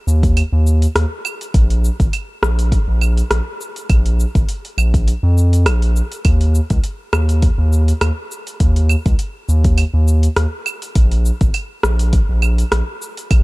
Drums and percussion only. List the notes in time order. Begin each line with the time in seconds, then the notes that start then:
0.08 cabasa
0.23 kick, open hi-hat, cabasa
0.37 open hi-hat, cabasa, claves
0.67 cabasa
0.82 open hi-hat, cabasa
0.96 cross-stick, open hi-hat, cabasa
1.25 cabasa, claves
1.41 open hi-hat, cabasa
1.54 kick, open hi-hat, cabasa
1.70 open hi-hat
1.84 cabasa
2.00 kick, open hi-hat, cabasa
2.13 open hi-hat, cabasa, claves
2.43 cross-stick, cabasa
2.59 open hi-hat, cabasa
2.72 kick, open hi-hat, cabasa
3.01 cabasa, claves
3.17 open hi-hat, cabasa
3.31 cross-stick, open hi-hat, cabasa
3.61 cabasa
3.76 open hi-hat, cabasa
3.90 kick, open hi-hat, cabasa, claves
4.06 open hi-hat
4.20 cabasa
4.35 kick, open hi-hat, cabasa
4.49 open hi-hat, cabasa
4.65 open hi-hat
4.78 cabasa, claves
4.94 kick, open hi-hat, cabasa
5.08 open hi-hat, cabasa
5.38 cabasa
5.53 open hi-hat, cabasa
5.66 cross-stick, open hi-hat, cabasa, claves
5.82 open hi-hat
5.96 cabasa
6.12 open hi-hat, cabasa
6.25 kick, open hi-hat, cabasa, claves
6.41 open hi-hat
6.55 cabasa
6.70 kick, open hi-hat, cabasa
6.84 open hi-hat, cabasa
7.13 cross-stick, cabasa, claves
7.29 open hi-hat, cabasa
7.42 kick, open hi-hat, cabasa
7.73 cabasa
7.88 open hi-hat, cabasa
8.01 cross-stick, open hi-hat, cabasa, claves
8.32 cabasa
8.47 open hi-hat, cabasa
8.60 kick, open hi-hat, cabasa
8.76 open hi-hat
8.89 cabasa, claves
9.06 kick, open hi-hat, cabasa
9.19 open hi-hat, cabasa
9.49 cabasa
9.64 kick, open hi-hat, cabasa
9.78 open hi-hat, cabasa, claves
10.08 cabasa
10.23 open hi-hat, cabasa
10.36 cross-stick, open hi-hat, cabasa
10.66 cabasa, claves
10.82 open hi-hat, cabasa
10.95 kick, open hi-hat, cabasa
11.12 open hi-hat
11.26 cabasa
11.41 kick, open hi-hat, cabasa
11.54 open hi-hat, cabasa, claves
11.83 cross-stick, cabasa
11.99 open hi-hat, cabasa
12.13 kick, open hi-hat, cabasa
12.42 cabasa, claves
12.58 open hi-hat, cabasa
12.72 cross-stick, open hi-hat, cabasa
13.02 cabasa
13.17 open hi-hat, cabasa
13.31 kick, open hi-hat, cabasa, claves